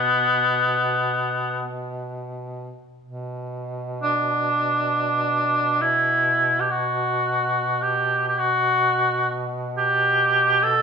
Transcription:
Already playing: duduk B2, cor anglais B3
3.03 duduk B2
4.03 cor anglais D4
5.81 cor anglais E4
6.60 cor anglais G4
6.70 cor anglais F#4
7.82 cor anglais G4
8.29 cor anglais G4
8.38 cor anglais F#4
9.78 cor anglais G4
10.63 cor anglais A4

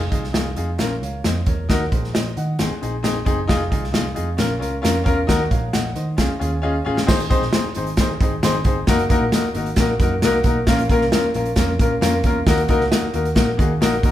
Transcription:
0.10 picked electric bass C2, grand piano D#4 F4 G#4, kick, closed hi-hat
0.24 snare
0.33 picked electric bass C2, grand piano D#4 F4 G#4, snare, closed hi-hat
0.56 picked electric bass F2, grand piano D#4 F4 G#4, closed hi-hat
0.78 picked electric bass A#1, grand piano C#4 F4 A#4, snare, closed hi-hat
1.02 picked electric bass C#2, grand piano C#5 F5, closed hi-hat
1.24 picked electric bass F2, grand piano C5 D#5, snare, closed hi-hat
1.46 picked electric bass E2, grand piano A#4 C#5, kick, closed hi-hat
1.69 picked electric bass D#2, grand piano D#4 F#4 A#4, kick, snare, closed hi-hat
1.92 picked electric bass A#1, grand piano G#4 C5, kick, closed hi-hat
2.04 snare
2.14 picked electric bass A#1, grand piano C5 D#5, snare, closed hi-hat
2.37 picked electric bass D#3, grand piano D#5 F#5, closed hi-hat
2.59 picked electric bass G#1, grand piano C4 D#4 G#4, snare, closed hi-hat
2.71 muted picked electric bass stroke
2.81 picked electric bass A#1, grand piano C4 D#4 G#4, closed hi-hat
3.03 grand piano C4 D#4 G#4, snare, closed hi-hat
3.25 picked electric bass F#1, grand piano C4 D#4 G#4, kick, closed hi-hat
3.47 picked electric bass F1, grand piano D#4 F4 G#4, kick, snare, closed hi-hat
3.70 picked electric bass C2, grand piano D#4 F4 G#4, kick, closed hi-hat
3.84 snare
3.92 picked electric bass C2, grand piano D#4 F4 G#4, snare, closed hi-hat
4.14 picked electric bass F2, grand piano D#4 F4 G#4, closed hi-hat
4.37 picked electric bass A#1, grand piano C#4 F4 A#4, snare, closed hi-hat
4.59 picked electric bass C#2, grand piano C#4 F4 A#4, closed hi-hat
4.82 picked electric bass F2, grand piano C#4 F4 A#4, snare, closed hi-hat
5.04 picked electric bass E2, grand piano C#4 F4 A#4, kick, closed hi-hat
5.27 picked electric bass D#2, grand piano D#4 F#4 A#4, kick, snare, closed hi-hat
5.51 picked electric bass A#1, grand piano C#5 F5, kick, closed hi-hat
5.73 picked electric bass A#1, grand piano D#5 F#5, snare, closed hi-hat
5.95 picked electric bass D#3, grand piano C5 D#5, closed hi-hat
6.17 picked electric bass C#2, grand piano C#4 F4 G#4, kick, snare, closed hi-hat
6.30 muted picked electric bass stroke
6.39 picked electric bass D#2, grand piano C#4 F4 G#4 G#5, closed hi-hat
6.62 grand piano C#4 F4 G#4 D#5
6.85 picked electric bass A1, grand piano C#4 F4 G#4
6.97 snare
7.06 picked electric bass G#1, grand piano C4 D#4 G#4 C5, kick, snare, crash
7.20 closed hi-hat
7.29 grand piano C4 D#4 G#4 C5, kick, closed hi-hat
7.42 picked electric bass A#1, snare
7.53 grand piano C4 D#4 G#4 C5, snare, closed hi-hat
7.65 muted picked electric bass stroke
7.75 picked electric bass G#1, grand piano C4 D#4 G#4 C5, closed hi-hat
7.87 closed hi-hat
7.97 grand piano C4 D#4 G#4 C5, kick, snare, closed hi-hat
8.21 picked electric bass G#1, grand piano C4 D#4 G#4 C5, kick, closed hi-hat
8.43 picked electric bass G#1, grand piano C4 D#4 G#4 C5, snare, closed hi-hat
8.64 picked electric bass G1, grand piano C4 D#4 G#4 C5, kick, closed hi-hat
8.87 picked electric bass F#1, grand piano A#3 D#4 F#4 A#4, kick, snare, closed hi-hat
8.99 closed hi-hat
9.09 grand piano A#3 D#4 F#4 A#4, kick, closed hi-hat
9.21 picked electric bass A#1
9.32 grand piano A#3 D#4 F#4 A#4, snare, closed hi-hat
9.44 muted picked electric bass stroke
9.55 picked electric bass G#1, grand piano A#3 D#4 F#4 A#4, closed hi-hat
9.66 closed hi-hat
9.76 picked electric bass A#1, grand piano A#3 D#4 F#4, kick, snare, closed hi-hat
9.80 grand piano A#4
10.00 picked electric bass F#2, grand piano A#3 D#4 F#4 A#4, kick, closed hi-hat
10.22 picked electric bass C2, grand piano A#3 D#4 F#4 A#4 F#5, snare, closed hi-hat
10.44 picked electric bass B1, grand piano A#3 D#4 F#4 A#4 A#5, kick, closed hi-hat
10.67 picked electric bass A#1, grand piano A#3 C#4 F4 A#4, kick, snare, closed hi-hat
10.79 closed hi-hat
10.89 grand piano A#3 C#4 F4 A#4, kick, closed hi-hat
11.02 picked electric bass C2, snare
11.12 grand piano A#3 C#4 F4 A#4, snare, closed hi-hat
11.24 muted picked electric bass stroke
11.34 picked electric bass A#1, grand piano A#3 C#4 F4 A#4, closed hi-hat
11.46 closed hi-hat
11.56 picked electric bass F2, grand piano A#3 C#4 F4 A#4, kick, snare, closed hi-hat
11.79 picked electric bass A#2, grand piano A#3 C#4 F4 A#4, kick, closed hi-hat
12.01 picked electric bass F2, grand piano A#3 C#4 F4 A#4, snare, closed hi-hat
12.24 picked electric bass E2, grand piano A#3 C#4 F4 A#4, kick, closed hi-hat
12.46 picked electric bass D#2, grand piano A#3 D#4 F#4 A#4, kick, snare, closed hi-hat
12.58 closed hi-hat
12.68 grand piano A#3 D#4 F#4 A#4, kick, closed hi-hat
12.80 picked electric bass C#2, snare
12.91 grand piano A#3 D#4 F#4 A#4, snare, closed hi-hat
13.03 muted picked electric bass stroke
13.13 picked electric bass D#2, grand piano A#3 D#4 F#4 A#4, closed hi-hat
13.25 closed hi-hat
13.35 picked electric bass A#1, grand piano A#3 D#4 F#4 A#4, kick, snare, closed hi-hat
13.57 picked electric bass D#3, grand piano A#3 D#4 F#4 G#4, kick, closed hi-hat
13.81 picked electric bass A#1, grand piano A#3 D#4 F#4 A#4, snare, closed hi-hat
14.03 picked electric bass A1, grand piano A#3 D#4 F#4 A#4, kick, closed hi-hat

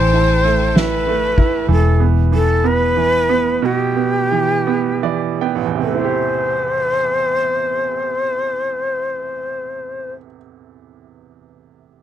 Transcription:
Already playing: fingered electric bass A1, upright piano E3 A3 E4, string section A4 G5 A5, shakuhachi C5
0.13 upright piano E4
0.45 upright piano A3, snare
0.75 upright piano E4, shakuhachi B4, snare, ride
1.07 upright piano A3, ride
1.38 upright piano E4, kick, ride
1.68 fingered electric bass E1, upright piano E3, shakuhachi A4
2.00 upright piano B3
2.32 upright piano E3, shakuhachi A4
2.64 upright piano B3, shakuhachi B4
2.96 upright piano E3
3.29 upright piano B3
3.62 upright piano B2, shakuhachi G4
3.97 upright piano B3
4.31 upright piano E3
4.67 upright piano B3
5.03 upright piano E3 D5
5.41 upright piano B3 G5
5.55 upright piano A1
5.65 upright piano E2
5.75 upright piano C3
5.82 upright piano A3, shakuhachi B4
5.94 upright piano E4, shakuhachi C5
6.04 upright piano G4

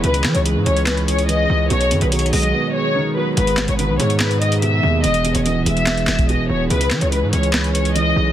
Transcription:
Already playing: analog synth pad E3
0.04 808-style bass C#2, grand piano C#3, analog synth pad C#4 G#4, violin section B4, closed hi-hat
0.14 closed hi-hat
0.24 808-style bass E3, grand piano E3, snare, clap, closed hi-hat
0.35 808-style bass C#2, violin section C#5, closed hi-hat
0.45 grand piano G#3, violin section B4, closed hi-hat
0.56 808-style bass G#2
0.66 808-style bass C#2, grand piano C#4, violin section C#5, closed hi-hat
0.77 closed hi-hat
0.86 violin section B4, snare, clap, closed hi-hat
0.97 closed hi-hat
1.08 violin section C#5, closed hi-hat
1.19 closed hi-hat
1.28 grand piano E3, violin section D#5, closed hi-hat
1.49 808-style bass C#2, grand piano G#3
1.70 808-style bass B1, grand piano B2, analog synth pad D#3 B3, violin section C#5, closed hi-hat
1.81 closed hi-hat
1.91 808-style bass F#2, grand piano D#3, closed hi-hat
2.01 808-style bass B1, violin section B4, closed hi-hat
2.12 grand piano F#3, violin section C#5, closed hi-hat
2.19 closed hi-hat
2.26 closed hi-hat
2.33 808-style bass B1, grand piano G#3, violin section D#5, open hi-hat
2.43 closed hi-hat
2.54 grand piano B3
2.74 violin section C#5
2.95 grand piano D#3
3.16 grand piano F#3, violin section B4
3.37 808-style bass G#1, grand piano G#2, violin section B4, closed hi-hat
3.47 closed hi-hat
3.57 grand piano B2, snare, clap, closed hi-hat
3.68 808-style bass G#1, violin section C#5, closed hi-hat
3.79 grand piano D#3, violin section B4, closed hi-hat
3.89 808-style bass B1
3.99 808-style bass G#2, grand piano G#3, violin section C#5, closed hi-hat
4.10 closed hi-hat
4.20 grand piano B3, violin section B4, snare, clap, closed hi-hat
4.31 closed hi-hat
4.42 violin section D#5, closed hi-hat
4.52 closed hi-hat
4.62 grand piano B2, violin section E5, closed hi-hat
4.83 808-style bass D#2, grand piano D#3
5.04 808-style bass E1, grand piano E2, analog synth pad E3, violin section D#5, closed hi-hat
5.14 closed hi-hat
5.25 grand piano B2, closed hi-hat
5.35 808-style bass E1, violin section C#5, closed hi-hat
5.45 grand piano E3, violin section D#5, closed hi-hat
5.56 808-style bass D#1
5.66 808-style bass E1, grand piano G#3, violin section E5, closed hi-hat
5.77 closed hi-hat
5.86 grand piano B3, snare, clap, closed hi-hat
5.98 closed hi-hat
6.07 808-style bass E1, violin section E5, snare, clap, closed hi-hat
6.18 kick, closed hi-hat
6.29 grand piano B2, violin section D#5, closed hi-hat
6.50 808-style bass E1, grand piano E3, violin section C#5
6.70 808-style bass C#2, grand piano C#3, analog synth pad E3 C#4, violin section B4, closed hi-hat
6.81 closed hi-hat
6.91 808-style bass E3, grand piano E3, snare, clap, closed hi-hat
7.01 808-style bass C#2, violin section C#5, closed hi-hat
7.12 grand piano G#3, violin section B4, closed hi-hat
7.23 808-style bass G#2
7.33 808-style bass C#2, grand piano C#4, violin section C#5, closed hi-hat
7.43 closed hi-hat
7.53 violin section B4, snare, clap, closed hi-hat
7.64 closed hi-hat
7.75 violin section C#5, closed hi-hat
7.85 closed hi-hat
7.95 grand piano E3, violin section D#5, closed hi-hat
8.16 808-style bass B1, grand piano G#3

